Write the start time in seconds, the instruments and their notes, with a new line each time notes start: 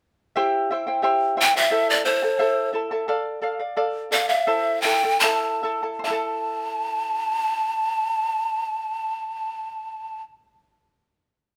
0.36 charango E4 G4 C5 E5 G5
0.71 charango E4 C5 E5 G5
0.87 charango E4 C5 G5
1.02 charango E4 G4 C5 E5 G5
1.37 charango E4 C5 E5 G5
1.41 pan flute G5
1.54 charango E4 C5 G5, pan flute E5
1.71 charango E4 A4 C5 E5 A5
1.90 pan flute D5
2.05 charango E4 A4 E5 A5, pan flute C5
2.23 charango E4 A4 A5
2.39 charango E4 A4 C5 E5 A5
2.73 charango E4 A4 E5 A5
2.91 charango E4 A4 A5
3.08 charango A4 D5 F5
3.42 charango A4 D5 F5
3.60 charango D5 F5
3.77 charango A4 D5 F5
4.11 charango A4 D5 F5, pan flute F5
4.29 charango D5 F5, pan flute E5
4.47 charango E4 A4 C5 E5 A5
4.82 charango E4 A4 E5, pan flute G5
4.86 charango A5
5.04 charango E4 A4 A5
5.20 charango E4 A4 C5 E5, pan flute A5
5.24 charango A5
5.63 charango E4 A4 E5 A5
5.83 charango E4 A4 A5
5.99 charango C5
6.04 charango E4 E5, pan flute A5
6.10 charango A4 A5